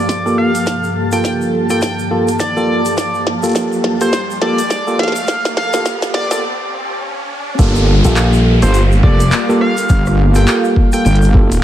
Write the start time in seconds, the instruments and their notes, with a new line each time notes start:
Already playing: analog synth pad G2 F3 A#3 A4, ambient pad A#3 G4 F5 A5, analog synth lead D5, riser
0.09 kick, snare, closed hi-hat, shaker
0.26 tine electric piano A#3 F4 G4 A4, shaker
0.38 analog synth lead F5
0.55 closed hi-hat, shaker
0.66 kick, snare, closed hi-hat, shaker
0.84 shaker
1.12 tine electric piano A#3 F4 G4 A4, analog synth lead G5, closed hi-hat, shaker
1.24 kick, snare, closed hi-hat, shaker
1.41 shaker
1.70 tine electric piano A#3 F4 G4 A4, analog synth lead G5, closed hi-hat, shaker
1.82 analog synth lead G5, kick, snare, closed hi-hat, shaker
1.99 shaker
2.11 tine electric piano A#3 F4 G4 A4
2.28 closed hi-hat, shaker
2.39 analog synth lead D5, kick, snare, closed hi-hat, shaker
2.57 tine electric piano A#3 F4 G4 A4, shaker
2.86 closed hi-hat, shaker
2.97 kick, snare, closed hi-hat, shaker
3.14 shaker
3.27 snare
3.43 tine electric piano A#3 F4 G4 A4, closed hi-hat, shaker
3.46 closed hi-hat
3.49 closed hi-hat
3.52 closed hi-hat
3.53 kick, snare, closed hi-hat, shaker
3.55 closed hi-hat
3.72 shaker
3.84 snare
4.01 tine electric piano A#3 F4 G4 A4, analog synth lead C5, closed hi-hat, shaker
4.13 kick, snare, closed hi-hat, shaker
4.31 shaker
4.41 tine electric piano A#3 F4 G4 A4, analog synth lead D5, snare
4.59 closed hi-hat, shaker
4.70 kick, snare, closed hi-hat, shaker
4.87 tine electric piano A#3 F4 G4 A4, shaker
4.99 analog synth lead F5, snare
5.03 snare
5.08 snare
5.12 snare, closed hi-hat, shaker
5.28 kick, snare, closed hi-hat, shaker
5.45 snare, shaker
5.57 analog synth lead F5, snare
5.73 tine electric piano A#3 F4 G4 A4, snare, closed hi-hat, shaker
5.85 kick, snare, closed hi-hat, shaker
6.02 snare, shaker
6.14 analog synth lead D5, snare
6.31 tine electric piano A#3 F4 G4 A4, analog synth lead D5, snare, closed hi-hat, shaker
7.59 wobble bass G1, analog synth pad G3 A#3 F4 A4, tine electric piano A#3 F4 G4 A4, ambient pad G4, kick, closed hi-hat, crash, downlifter, shaker
7.76 ambient pad A#3, shaker
8.01 slap bass A#1, tine electric piano A#3 F4 G4 A4, ambient pad F5, closed hi-hat, shaker
8.16 clap, closed hi-hat, shaker
8.33 shaker
8.62 wobble bass G1, tine electric piano A#3 F4 G4 A4, analog synth lead C5, closed hi-hat, shaker
8.74 closed hi-hat, shaker
8.92 shaker
9.03 slap bass F1, tine electric piano A#3 F4 G4 A4, analog synth lead D5, kick
9.20 closed hi-hat, shaker
9.32 clap, closed hi-hat, shaker
9.49 tine electric piano A#3 F4 G4 A4, shaker
9.61 analog synth lead F5, cross-stick
9.77 closed hi-hat, shaker
9.89 wobble bass G1, kick, closed hi-hat, shaker
10.06 cross-stick, shaker
10.35 tine electric piano A#3 F4 G4 A4, analog synth lead G5, closed hi-hat, shaker
10.47 clap, closed hi-hat, shaker
10.64 shaker
10.76 kick
10.92 tine electric piano A#3 F4 G4 A4, analog synth lead G5, closed hi-hat, shaker
11.05 wobble bass G1, analog synth lead G5, closed hi-hat, shaker
11.15 closed hi-hat
11.22 closed hi-hat, shaker
11.34 tine electric piano A#3 F4 G4 A4, kick
11.52 closed hi-hat, shaker